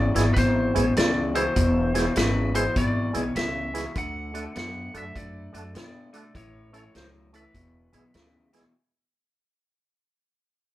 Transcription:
Already playing: E2 C#3 D5
0.15 G#1 E2 B2 G#3 B3 E4 G#4, snare, closed hi-hat
0.34 G#1 E2 B2 B4, kick, closed hi-hat
0.38 C5, snare
0.74 A1 E2 B2 G#3 B3 E4 G#4, closed hi-hat
0.97 C#2 E2 C#3 D5, snare, closed hi-hat
1.34 E2 B2 G#3 B3 E4 G#4 C5, closed hi-hat
1.56 E1 E2 B2, kick, closed hi-hat
1.94 E2 B2 G#3 B3 E4 G#4, snare, closed hi-hat
2.16 G#1 E2 C#3 B4, snare, closed hi-hat
2.54 E2 B2 G#3 B3 E4 G#4 C5, closed hi-hat
2.76 G#1 E2 B2 D5, kick, closed hi-hat
3.13 B1 E2 B2 G#3 B3 E4 G#4, closed hi-hat
3.21 C#5
3.35 C#2 E2 C#3 E5, snare, closed hi-hat
3.74 E2 B2 G#3 B3 E4 G#4, snare, closed hi-hat
3.95 D2 D3 A3 F#5, kick, closed hi-hat
4.34 D3 A3 D4 F#4 A4, closed hi-hat
4.55 F#2 D3 B3 F#5, snare, closed hi-hat
4.94 F#2 D3 A3 D4 F#4 A4 E5, closed hi-hat
5.15 F#2 D3 A3 D5, kick, closed hi-hat
5.53 F#2 D3 A3 D4 F#4 A4, closed hi-hat
5.75 B2 D3 B3 D5, snare, closed hi-hat
6.13 D3 A3 D4 F#4 A4, closed hi-hat
6.35 A1 A2 E3 C#5, kick, closed hi-hat
6.73 A2 E3 A3 C#4 E4 A4 C#5, closed hi-hat
6.94 C#2 A2 F#3 C5, snare, closed hi-hat
7.33 A2 E3 A3 C#4 E4 A4 B4, closed hi-hat
7.54 E1 E2 B2, kick, closed hi-hat
7.93 B1 E2 B2 G#3 B3 E4 G#4, closed hi-hat
8.14 D2 E2 C#3, snare, closed hi-hat
8.53 E2 B2 G#3 B3 E4 G#4, snare, closed hi-hat

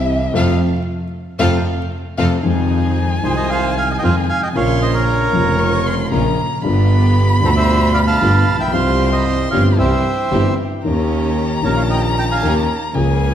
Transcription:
Already playing: C2 C3 E3 G3 C4 E4 G4 E5
0.34 F2 C3 F3 A3 C4 F4 A4 F5
1.39 F2 C3 F3 A3 C4 F4 A4 F5
2.18 F2 C3 F3 A3 C4 F4 A4 F5
2.42 F2 D#3 F3 G#3 C4 D#4 F4 G#4 G#5
3.22 C2 C3 D#3 G#3 C4 D#4 F4 G#4 C5
3.36 C5 D#5
3.50 C5 F5
3.77 F5 G#5
3.94 G#5
3.99 D#3 G#3 D#5 G5
4.03 F2 F3 C4 D#4 F4 G#4 C5 F5
4.29 F5 G#5
4.43 D#5 G5
4.53 A#1 A#2 C#3 F3 A#3 C#4 F4 A#4 C#5 F5 C6
4.57 F4
4.82 C5 D#5
4.94 A#4 C#5
5.07 A#5
5.32 F1 F2 C#3 F3 A#3 C#4 F4 A#4
5.36 F4
5.59 C#6
5.87 C6
6.11 A#1 A#2 C#3 F3 A#3 C#4 F4 A#4 A#5
6.62 G1 G2 D3 G3 B3 F4 G4 B5
6.66 F4
7.40 D2 B2 D3 G3 D4 F4 G4
7.44 F4 A4 C5
7.57 C5 E5
7.94 D5 F5
8.07 F5 A5
8.21 G1 G2 D3 G3 B3 F4 G4
8.47 A#1
8.54 A1
8.60 A#1 E5 G5
8.67 B1
8.71 C2 C3 F3 G3 C4 F4 G4 C5 F5 C6
9.11 C5 D#5
9.19 B5
9.25 C6
9.51 G1 G2 F3 G3 C4 F4 G4 C#5 F5
9.78 C2 C3 E3 G3 C4 E4 G4 C5 E5 G5
10.31 G1 G2 E3 G3 C4 E4 G4
10.84 D#2 D#3 A#3 C#4 D#4 G4 A#5
11.61 A#1 A#2 D#3 A#3 C#4 D#4 G4 A#4 C#5
11.76 C#5 F5
11.90 D#5 G5
12.18 G5 A#5
12.31 F5 G#5
12.42 D#2 D#3 A#3 C#4 D#4 G4
12.93 C#2 C#3 F3 A#3 C#4 G#4 G#5

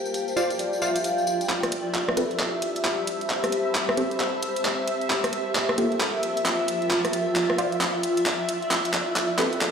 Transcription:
Already playing: F4 G4 G5 A5
0.04 D5, tambourine
0.14 closed hi-hat, tambourine
0.28 C5, tambourine
0.37 F4 C5 D5 E5 F5, tambourine
0.50 closed hi-hat, tambourine
0.59 D5, closed hi-hat, tambourine
0.73 tambourine
0.82 F4 C5 D5 E5 F5, tambourine
0.96 closed hi-hat, tambourine
1.04 F5, closed hi-hat, tambourine
1.18 tambourine
1.27 tambourine
1.41 closed hi-hat, tambourine
1.49 G4 E5, clap, closed hi-hat
1.63 cross-stick, closed hi-hat
1.72 closed hi-hat
1.85 C5
1.92 A5, clap, closed hi-hat
2.08 cross-stick
2.17 C4 G4 A4 B4, closed hi-hat
2.31 B5, closed hi-hat
2.40 clap, closed hi-hat
2.62 closed hi-hat
2.76 closed hi-hat
2.85 clap, closed hi-hat
3.07 closed hi-hat
3.21 closed hi-hat
3.30 clap, closed hi-hat
3.44 cross-stick, closed hi-hat
3.52 closed hi-hat
3.75 clap, closed hi-hat
3.89 cross-stick
3.97 C4 G4 A4 C5, closed hi-hat
4.11 closed hi-hat
4.20 clap, closed hi-hat
4.43 closed hi-hat
4.56 closed hi-hat
4.65 clap, closed hi-hat
4.88 closed hi-hat
5.01 closed hi-hat
5.10 F4, clap, closed hi-hat
5.24 A#4, cross-stick, closed hi-hat
5.33 closed hi-hat
5.55 clap, closed hi-hat
5.69 cross-stick
5.78 A#3 F4 G4 A4, closed hi-hat
5.92 G5, closed hi-hat
6.01 clap, closed hi-hat
6.23 closed hi-hat
6.37 closed hi-hat
6.46 clap, closed hi-hat
6.68 closed hi-hat
6.82 closed hi-hat
6.91 clap, closed hi-hat
7.05 D5, cross-stick, closed hi-hat
7.11 E5, closed hi-hat
7.17 C6
7.36 clap, closed hi-hat
7.50 cross-stick
7.58 F4 C5 D5 F5, closed hi-hat
7.72 closed hi-hat
7.81 clap, closed hi-hat
8.03 closed hi-hat
8.17 closed hi-hat
8.26 clap, closed hi-hat
8.49 closed hi-hat
8.62 closed hi-hat
8.71 A4, clap, closed hi-hat
8.85 closed hi-hat
8.94 clap, closed hi-hat
9.02 C5 G5
9.16 clap, closed hi-hat
9.39 C4 G4 A4 B4, clap, closed hi-hat
9.53 closed hi-hat
9.61 clap, closed hi-hat

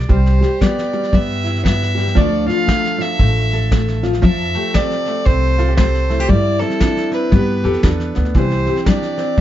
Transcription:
0.09 C2 C3 G3 G4 C5, kick, snare
0.26 snare
0.41 G3 G4, snare
0.61 G3 B3 D5, kick, snare
0.78 snare
0.93 G3, snare
1.03 snare
1.13 G2 G3 B3 E5, kick, snare
1.44 E4, snare
1.56 snare
1.63 G3 B3 E5, kick, snare
1.82 snare
1.95 G3 G4, snare
2.07 snare
2.15 D2 D3 F3 A3 D4 F4 D5, kick, snare
2.20 A4
2.46 F3 F4 F5, snare
2.67 A3, kick, snare
2.84 snare
2.98 F3 E5, snare
3.19 A1 A2 A3, kick, snare
3.52 A4, snare
3.71 A3, kick, snare
3.88 snare
4.03 F3 F4, snare
4.13 snare
4.22 F2 F3 A4 E5, kick, snare
4.55 A3 G4, snare
4.74 A3 C4 D5, kick, snare
4.91 snare
5.06 A3, snare
5.24 C2 C3 C4 C5, kick, snare
5.58 F4 A4, snare
5.68 G4
5.76 A3 C4 C5, kick, snare
5.95 snare
6.09 A3 E4, snare
6.20 G4, snare
6.28 G2 G3 E4 D5, kick, snare
6.59 C4 E4 A4, snare
6.70 snare
6.80 C4 D4, kick, snare
6.97 snare
7.11 C4 B4, snare
7.31 G2 G3 B3 G4, kick, snare
7.64 F2 G4 A4, snare
7.73 snare
7.83 E2 D4, kick, snare
8.00 snare
8.15 D2 B3, snare
8.25 snare
8.34 C2 C3 E3 G4 C5, kick, snare
8.50 snare
8.66 C4 G4, snare
8.76 snare
8.86 G3 D4 D5, kick, snare
9.02 snare
9.17 C4, snare
9.37 snare

